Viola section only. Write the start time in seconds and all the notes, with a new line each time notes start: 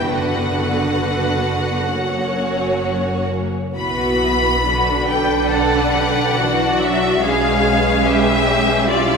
0.10 D3 B3
1.92 F#3 A#3
3.74 E3 B3
4.67 D3 D4
5.52 D3
6.37 E3
6.79 F#3
7.22 G#3 C#4
8.88 G3